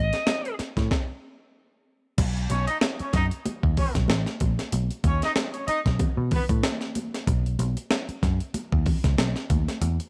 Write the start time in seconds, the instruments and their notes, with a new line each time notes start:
Already playing: picked electric bass A1, lead electric guitar D#5
0.13 snare, closed hi-hat
0.27 snare, closed hi-hat, high conga
0.45 closed hi-hat
0.59 muted picked electric bass stroke, snare, closed hi-hat
0.77 picked electric bass A2, kick, snare, closed hi-hat
0.91 kick, snare
2.18 picked electric bass B1, kick, closed hi-hat, crash, muted conga
2.37 closed hi-hat
2.50 picked electric bass B1, horn section C#4 C#5, closed hi-hat, muted conga
2.67 horn section D#4 D#5, closed hi-hat
2.81 snare, closed hi-hat, high conga
2.99 horn section C#4 C#5, muted picked electric bass stroke, closed hi-hat
3.13 picked electric bass F#2, horn section D#4 D#5, kick, snare, closed hi-hat
3.31 closed hi-hat
3.46 muted picked electric bass stroke, closed hi-hat, muted conga
3.63 picked electric bass D#2, kick
3.77 horn section C#4 C#5, kick, open hi-hat, muted conga, low conga
3.95 picked electric bass B1, kick, snare, closed hi-hat
4.08 picked electric bass A1, snare, closed hi-hat, high conga
4.26 snare, closed hi-hat
4.40 picked electric bass A#1, kick, closed hi-hat, high conga
4.59 snare, closed hi-hat
4.72 picked electric bass B1, closed hi-hat, muted conga
4.91 closed hi-hat
5.04 picked electric bass D#2, horn section C#4 C#5, kick, closed hi-hat, muted conga
5.22 horn section D#4 D#5, snare, closed hi-hat
5.36 snare, closed hi-hat, high conga
5.53 horn section C#4 C#5, closed hi-hat
5.67 horn section D#4 D#5, muted picked electric bass stroke, closed hi-hat
5.86 picked electric bass B1, kick, snare, closed hi-hat
5.99 muted picked electric bass stroke, kick, closed hi-hat, muted conga, low conga
6.17 picked electric bass B2
6.31 horn section B3 B4, kick, open hi-hat, muted conga, low conga
6.49 picked electric bass A2, kick, closed hi-hat
6.63 snare, closed hi-hat, high conga
6.81 snare, closed hi-hat
6.95 closed hi-hat, high conga
7.14 snare, closed hi-hat
7.27 picked electric bass B1, kick, closed hi-hat, muted conga
7.46 closed hi-hat
7.59 picked electric bass B1, closed hi-hat, muted conga
7.77 closed hi-hat
7.91 snare, closed hi-hat, high conga
8.09 muted picked electric bass stroke, closed hi-hat
8.23 picked electric bass F#2, kick, snare, closed hi-hat
8.40 closed hi-hat
8.54 muted picked electric bass stroke, closed hi-hat, muted conga
8.72 picked electric bass D#2, kick
8.86 kick, open hi-hat, muted conga, low conga
9.04 picked electric bass C#2, kick, snare, closed hi-hat
9.18 picked electric bass B1, snare, closed hi-hat, high conga
9.36 snare, closed hi-hat
9.50 picked electric bass D#2, kick, closed hi-hat, high conga
9.68 snare, closed hi-hat
9.82 picked electric bass E2, closed hi-hat, muted conga
10.00 closed hi-hat